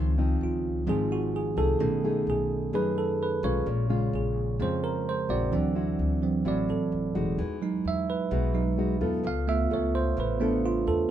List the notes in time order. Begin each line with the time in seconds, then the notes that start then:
Already playing: C#2 C#3 D#3 F3 C4 D#4
0.18 F3 C4 D#4
0.41 C#2 F4
0.87 G#1 G#2 D#3 F3 C4 D#4 G#4
1.12 F#4
1.36 G#4
1.57 C2 A3 D#4 G#4 A4
1.79 B1 B2 D#3 A3 C#4
2.04 A3 D#4 G#4
2.27 B1 G#4
2.73 F#2 A3 D#4 G#4 B4
2.98 A4
3.23 B4
3.43 B1 G#3 C#4 F4 C#5
3.66 A#1 A#2
3.89 C#3 G#3 C#4 F4
4.13 A#1 G#4
4.60 F2 C#3 G#3 C4 C#4 F4 C5
4.84 A#4
5.09 C5
5.29 A#1 C4 E4 F#4 D5
5.52 D2 D3 E3 F#3 C4
5.75 C4 E4 F#4
5.99 D2
6.22 E3 F#3 C4
6.45 A1 A2 C4 E4 F#4 D5
6.69 G#1 A4
6.92 F#1
7.15 E1 G#3 D#4 F#4
7.38 E2 E3
7.62 F#3 G#3 D#4
7.85 E2 E5
8.10 B4
8.31 B1 B2 G#3 D#4 F#4
8.54 F#3 G#3 D#4
8.78 G#3 D#4 F#4
9.01 E2 B3 F4 A4
9.23 C#2 C#3 F5
9.47 A3 B3 F4 E5
9.70 C#2 B3 F4 A4 C#5
9.95 C5
10.17 A1 C#3 B4
10.40 A3 B3 D4 F4 A4
10.65 F4
10.87 E2 A4